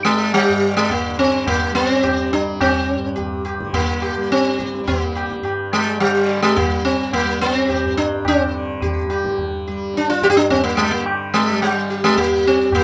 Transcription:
0.00 0.48 G2 medium
0.00 1.07 D3 medium
0.00 1.71 G3 medium
0.05 0.34 G#3 medium
0.33 0.76 G3 medium
0.33 tabla na medium
0.49 2.95 G2 medium
0.77 0.90 G#3 medium
0.90 1.17 A#3 medium
0.90 tabla tin medium
0.90 tabla ge medium
1.08 3.57 D3 medium
1.19 1.47 C4 medium
1.47 1.74 A#3 medium
1.47 tabla na medium
1.47 tabla ge medium
1.71 2.33 G3 medium
1.71 1.90 B3 medium
1.76 tabla te medium
1.90 2.32 C4 medium
2.03 2.30 G4 soft
2.03 tabla na medium
2.03 tabla ge medium
2.32 4.17 G3 medium
2.32 2.61 D4 medium
2.32 tabla te medium
2.61 3.42 C4 medium
2.61 tabla na medium
2.61 tabla ge medium
2.96 5.41 G2 soft
3.16 3.43 G4 soft
3.16 tabla tin medium
3.16 tabla ge medium
3.45 3.71 G4 soft
3.45 tabla na medium
3.57 6.03 D3 medium
3.57 tabla ke medium
3.73 4.31 A#3 medium
3.73 tabla tin medium
3.73 tabla ge medium
4.02 4.28 G4 soft
4.02 tabla na medium
4.17 4.80 G3 medium
4.31 4.87 C4 medium
4.31 tabla te medium
4.45 tabla te medium
4.59 4.85 G4 soft
4.59 tabla ke soft
4.74 tabla te medium
4.80 6.65 G3 medium
4.87 5.40 A#3 medium
4.87 tabla tin medium
4.87 tabla ge medium
5.15 5.41 G4 soft
5.15 tabla na medium
5.30 tabla ke medium
5.42 7.84 G2 medium
5.42 5.69 G4 soft
5.42 tabla na medium
5.73 6.00 G#3 medium
5.73 tabla na medium
6.00 8.45 D3 medium
6.00 6.42 G3 medium
6.00 tabla na medium
6.27 6.53 G4 soft
6.42 6.57 G#3 medium
6.56 6.84 A#3 medium
6.56 tabla tin medium
6.56 tabla ge medium
6.65 7.24 G3 medium
6.85 7.13 C4 medium
7.13 7.41 A#3 medium
7.13 tabla na medium
7.13 tabla ge medium
7.24 9.06 G3 medium
7.41 7.56 B3 medium
7.41 tabla te medium
7.56 7.97 C4 medium
7.68 7.94 G4 soft
7.68 tabla na medium
7.68 tabla ge medium
7.84 10.28 G2 medium
7.97 8.26 D4 medium
7.97 tabla te medium
8.25 9.06 C4 medium
8.25 tabla na medium
8.25 tabla ge medium
8.46 10.88 D3 medium
8.82 9.08 G4 soft
8.82 tabla tin medium
8.82 tabla ge medium
9.06 9.69 G3 medium
9.06 9.35 G4 soft
9.06 tabla na medium
9.24 tabla ke soft
9.38 tabla tin medium
9.38 tabla ge medium
9.67 11.50 G3 medium
9.67 9.92 G4 soft
9.94 10.09 D4 medium
9.94 tabla te medium
10.08 10.23 F4 medium
10.08 tabla te medium
10.22 10.28 F4 medium
10.22 10.26 G4 medium
10.22 tabla ke soft
10.28 12.69 G2 medium
10.28 10.36 G4 medium
10.36 10.50 D4 medium
10.36 tabla te medium
10.50 10.63 C4 medium
10.50 tabla tin medium
10.50 tabla ge medium
10.64 10.76 A#3 medium
10.77 10.91 G#3 medium
10.77 tabla na medium
10.88 12.84 D3 medium
10.88 11.04 A#3 medium
11.06 tabla na medium
11.34 11.62 G#3 medium
11.34 11.59 G4 soft
11.50 12.10 G3 medium
11.61 11.73 G#3 medium
11.61 tabla na medium
11.73 12.04 G3 medium
11.90 12.15 G4 soft
12.04 12.17 G#3 medium
12.10 12.84 G3 medium
12.17 12.46 A#3 medium
12.17 12.43 G4 soft
12.17 tabla tin medium
12.17 tabla ge medium
12.46 12.74 C4 medium
12.46 12.71 G4 soft
12.69 12.84 G2 medium
12.69 tabla na medium
12.69 tabla ge medium
12.74 12.84 A#3 medium
12.74 12.84 G4 soft

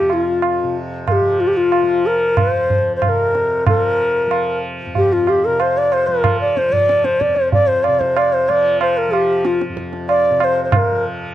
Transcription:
0.00 2.44 F2 medium
0.00 0.63 C3 medium
0.00 1.22 F3 medium
0.00 0.14 G4 medium
0.10 0.77 F4 medium
0.10 tabla na medium
0.42 tabla na medium
0.63 3.06 C3 medium
1.08 1.13 A#4 medium
1.08 tabla na medium
1.08 tabla ge medium
1.12 1.42 G4 medium
1.22 1.83 F3 medium
1.40 1.49 F4 medium
1.48 1.54 G4 medium
1.54 2.08 F4 medium
1.54 1.58 G4 medium
1.72 tabla na medium
1.83 3.67 F3 medium
2.07 2.39 A#4 medium
2.37 2.95 C5 loud
2.37 tabla na medium
2.37 tabla ge medium
2.45 4.86 F2 medium
2.70 tabla ge soft
2.96 3.04 C5 medium
3.02 3.10 C5 medium
3.02 tabla na medium
3.02 tabla ge medium
3.07 5.47 C3 medium
3.07 3.67 A#4 medium
3.35 tabla te medium
3.66 4.27 F3 medium
3.66 4.60 A#4 medium
3.66 tabla na medium
3.66 tabla ge medium
4.27 6.08 F3 medium
4.31 tabla na medium
4.86 7.28 F2 medium
4.95 5.14 G4 medium
4.95 tabla tin medium
4.95 tabla ge medium
5.13 5.30 F4 medium
5.27 5.46 G4 medium
5.27 tabla na medium
5.45 7.87 C3 medium
5.45 5.62 A#4 medium
5.60 5.79 C5 medium
5.60 tabla na medium
5.78 5.94 D5 medium
5.92 6.09 C5 loud
5.92 tabla na medium
6.07 6.69 F3 medium
6.07 6.40 A#4 medium
6.24 tabla na medium
6.24 tabla ge medium
6.41 6.59 D5 medium
6.57 6.74 C5 medium
6.57 tabla te medium
6.69 8.49 F3 medium
6.69 7.06 D5 medium
6.69 tabla ge medium
6.89 tabla te medium
7.04 7.22 C5 medium
7.04 tabla te medium
7.21 7.37 D5 medium
7.21 tabla ke medium
7.28 9.69 F2 medium
7.35 7.52 C5 medium
7.35 tabla te medium
7.52 7.69 D5 medium
7.52 tabla tin medium
7.52 tabla ge medium
7.67 7.85 C5 medium
7.84 8.01 D5 medium
7.84 tabla na medium
7.88 10.30 C3 medium
8.00 8.19 C5 medium
8.00 tabla ke medium
8.17 8.35 D5 medium
8.17 tabla na medium
8.33 8.51 C5 medium
8.49 9.08 F3 medium
8.49 8.81 D5 loud
8.49 tabla na medium
8.81 8.99 C5 medium
8.81 tabla na medium
8.97 9.14 A#4 medium
9.08 10.92 F3 medium
9.13 9.47 G4 medium
9.13 tabla na medium
9.44 9.61 F4 medium
9.44 tabla te medium
9.61 tabla te medium
9.69 11.35 F2 medium
9.77 tabla ke medium
9.93 tabla te medium
10.09 10.40 D5 loud
10.09 tabla na medium
10.30 11.35 C3 medium
10.40 10.45 D5 medium
10.40 tabla na medium
10.44 10.64 C5 medium
10.64 10.72 C5 medium
10.72 10.78 C5 medium
10.72 tabla na medium
10.72 tabla ge medium
10.77 11.04 A#4 medium
10.92 11.35 F3 medium

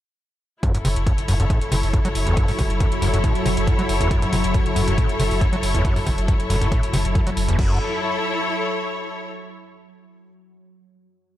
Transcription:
0.63 0.72 F#2 loud
0.63 7.63 F#3 medium
0.63 7.57 E4 medium
0.63 kick loud
0.63 closed hi-hat medium
0.74 0.84 F#1 medium
0.74 0.78 F#2 loud
0.74 7.59 A4 medium
0.74 closed hi-hat medium
0.85 0.96 F#1 loud
0.85 0.89 C3 loud
0.85 7.59 C#5 medium
0.85 open hi-hat loud
0.96 1.06 F#1 medium
0.96 closed hi-hat medium
1.06 1.13 F#2 loud
1.06 kick loud
1.06 closed hi-hat medium
1.18 1.28 F#1 medium
1.18 closed hi-hat medium
1.28 1.39 F#1 loud
1.28 1.35 F#2 loud
1.28 open hi-hat loud
1.40 1.50 F#1 medium
1.40 1.45 F#2 medium
1.40 closed hi-hat medium
1.50 1.59 A2 medium
1.50 kick loud
1.50 closed hi-hat medium
1.61 1.71 F#1 medium
1.61 closed hi-hat medium
1.72 1.83 F#1 loud
1.72 1.76 C3 loud
1.72 open hi-hat loud
1.83 1.93 F#1 medium
1.83 open hi-hat medium
1.93 2.00 F#2 loud
1.93 kick loud
1.93 closed hi-hat medium
2.05 2.15 F#1 medium
2.05 2.08 F#3 loud
2.05 closed hi-hat medium
2.15 2.26 F#1 loud
2.15 open hi-hat loud
2.27 2.37 F#1 medium
2.27 2.35 E2 loud
2.27 closed hi-hat medium
2.37 2.46 F#2 loud
2.37 kick loud
2.37 closed hi-hat medium
2.48 2.58 F#1 medium
2.48 2.52 F#2 loud
2.48 open hi-hat medium
2.59 2.70 F#1 loud
2.59 2.62 C3 loud
2.59 kick medium
2.59 open hi-hat loud
2.70 2.80 F#1 medium
2.70 closed hi-hat medium
2.80 2.87 F#2 loud
2.80 kick loud
2.80 closed hi-hat medium
2.92 3.02 F#1 medium
2.92 closed hi-hat medium
3.02 3.13 F#1 loud
3.02 3.08 F#2 loud
3.02 open hi-hat loud
3.14 3.24 F#1 medium
3.14 3.19 F#2 medium
3.14 closed hi-hat medium
3.24 3.33 A2 medium
3.24 kick loud
3.24 closed hi-hat medium
3.35 3.45 F#1 medium
3.35 closed hi-hat medium
3.46 3.57 F#1 loud
3.46 3.49 C3 loud
3.46 open hi-hat loud
3.57 3.67 F#1 medium
3.57 closed hi-hat medium
3.67 3.74 F#2 loud
3.67 kick loud
3.67 closed hi-hat medium
3.79 3.88 F#1 medium
3.79 3.82 F#3 loud
3.79 closed hi-hat medium
3.89 4.00 F#1 loud
3.89 open hi-hat loud
4.01 4.11 F#1 medium
4.01 4.09 E2 loud
4.01 closed hi-hat medium
4.11 4.20 F#2 loud
4.11 kick loud
4.11 closed hi-hat medium
4.22 4.32 F#1 medium
4.22 4.26 F#2 loud
4.22 closed hi-hat medium
4.33 4.44 F#1 loud
4.33 4.36 C3 loud
4.33 open hi-hat loud
4.44 4.54 F#1 medium
4.44 closed hi-hat medium
4.54 4.61 F#2 loud
4.54 kick loud
4.54 closed hi-hat medium
4.66 4.76 F#1 medium
4.66 closed hi-hat medium
4.76 4.87 F#1 loud
4.76 4.82 F#2 loud
4.76 open hi-hat loud
4.88 4.98 F#1 medium
4.88 4.93 F#2 medium
4.88 closed hi-hat medium
4.98 5.07 A2 medium
4.98 kick loud
4.98 closed hi-hat medium
5.09 5.19 F#1 medium
5.09 closed hi-hat medium
5.20 5.30 F#1 loud
5.20 5.23 C3 loud
5.20 open hi-hat loud
5.31 5.41 F#1 medium
5.31 open hi-hat medium
5.41 5.48 F#2 loud
5.41 kick loud
5.41 closed hi-hat medium
5.53 5.62 F#1 medium
5.53 5.56 F#3 loud
5.53 closed hi-hat medium
5.63 5.74 F#1 loud
5.63 open hi-hat loud
5.74 5.85 F#1 medium
5.74 5.83 E2 loud
5.74 closed hi-hat medium
5.85 5.94 F#2 loud
5.85 kick loud
5.85 closed hi-hat medium
5.96 6.06 F#1 medium
5.96 6.00 F#2 loud
5.96 open hi-hat medium
6.06 6.17 F#1 loud
6.06 6.10 C3 loud
6.06 kick medium
6.06 open hi-hat loud
6.18 6.28 F#1 medium
6.18 closed hi-hat medium
6.28 6.35 F#2 loud
6.28 kick loud
6.28 closed hi-hat medium
6.40 6.49 F#1 medium
6.40 closed hi-hat medium
6.50 6.61 F#1 loud
6.50 6.56 F#2 loud
6.50 open hi-hat loud
6.61 6.72 F#1 medium
6.61 6.67 F#2 medium
6.61 closed hi-hat medium
6.72 6.81 A2 medium
6.72 kick loud
6.72 closed hi-hat medium
6.83 6.93 F#1 medium
6.83 closed hi-hat medium
6.93 7.04 F#1 loud
6.93 6.97 C3 loud
6.93 open hi-hat loud
7.05 7.15 F#1 medium
7.05 closed hi-hat medium
7.15 7.21 F#2 loud
7.15 kick loud
7.15 closed hi-hat medium
7.27 7.36 F#1 medium
7.27 7.30 F#3 loud
7.27 closed hi-hat medium
7.37 7.48 F#1 loud
7.37 open hi-hat loud
7.48 7.58 F#1 medium
7.48 7.57 E2 loud
7.48 closed hi-hat medium
7.59 7.79 F#1 loud
7.59 7.79 F#2 medium
7.59 9.29 E4 medium
7.59 kick loud
7.59 crash medium
7.66 9.29 A4 medium
7.72 9.29 C#5 medium

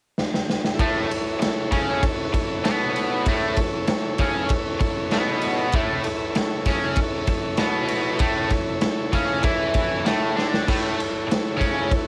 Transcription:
0.18 snare medium
0.34 snare medium
0.50 snare medium
0.64 snare medium
0.75 5.67 E4 medium
0.75 5.68 A4 medium
0.79 1.08 A2 medium
0.79 1.10 A3 loud
0.79 5.69 C#5 medium
0.79 kick loud
0.79 ride loud
1.09 muted overdriven electric guitar stroke medium
1.09 ride medium
1.40 muted overdriven electric guitar stroke medium
1.40 snare loud
1.40 ride loud
1.71 2.01 C#3 medium
1.71 2.02 C#4 loud
1.71 kick medium
1.71 ride medium
2.03 kick loud
2.03 ride loud
2.33 muted overdriven electric guitar stroke medium
2.33 kick medium
2.33 ride medium
2.64 3.25 B2 medium
2.64 3.25 B3 loud
2.64 snare loud
2.64 ride loud
2.96 ride medium
3.26 3.57 A2 loud
3.26 3.57 A3 loud
3.26 kick loud
3.26 ride loud
3.56 muted overdriven electric guitar stroke medium
3.56 kick medium
3.56 ride medium
3.87 muted overdriven electric guitar stroke medium
3.87 snare loud
3.87 ride loud
4.18 4.49 C#3 medium
4.18 4.50 C#4 medium
4.18 kick medium
4.18 ride medium
4.49 kick loud
4.49 ride loud
4.80 muted overdriven electric guitar stroke medium
4.80 kick loud
4.80 ride medium
5.11 5.73 B2 loud
5.11 5.73 B3 loud
5.11 snare loud
5.11 ride medium
5.41 ride medium
5.72 6.03 A2 medium
5.72 6.04 A3 loud
5.72 10.64 E4 medium
5.72 10.65 A4 medium
5.72 kick loud
5.72 ride loud
5.77 10.66 C#5 medium
6.04 muted overdriven electric guitar stroke medium
6.04 ride medium
6.35 muted overdriven electric guitar stroke medium
6.35 snare loud
6.35 ride loud
6.65 6.96 C#3 medium
6.65 6.98 C#4 loud
6.65 kick medium
6.65 ride medium
6.96 kick loud
6.96 ride loud
7.27 muted overdriven electric guitar stroke medium
7.27 kick medium
7.27 ride medium
7.57 8.19 B2 loud
7.57 8.20 B3 loud
7.57 snare loud
7.57 ride medium
7.88 ride medium
8.19 8.50 A2 loud
8.19 8.51 A3 loud
8.19 kick loud
8.19 ride loud
8.50 muted overdriven electric guitar stroke medium
8.50 kick medium
8.50 ride medium
8.81 muted overdriven electric guitar stroke medium
8.81 snare loud
8.81 ride loud
9.13 9.42 C#3 medium
9.13 9.43 C#4 medium
9.13 kick medium
9.13 ride medium
9.43 10.04 E3 medium
9.43 10.05 E4 loud
9.43 kick loud
9.43 ride loud
9.74 kick loud
9.74 ride medium
10.05 10.35 A2 medium
10.05 10.36 A3 loud
10.05 snare loud
10.05 ride loud
10.37 10.66 D3 loud
10.37 10.67 D4 loud
10.37 snare medium
10.54 snare loud
10.66 10.96 A2 medium
10.66 10.98 A3 loud
10.66 12.07 E4 medium
10.66 12.07 A4 medium
10.66 12.07 C#5 medium
10.66 kick loud
10.66 crash loud
10.97 muted overdriven electric guitar stroke medium
10.97 ride medium
11.28 muted overdriven electric guitar stroke medium
11.28 snare loud
11.28 ride loud
11.57 11.89 C#3 medium
11.57 11.90 C#4 loud
11.57 kick medium
11.61 ride medium
11.91 kick loud
11.91 ride loud

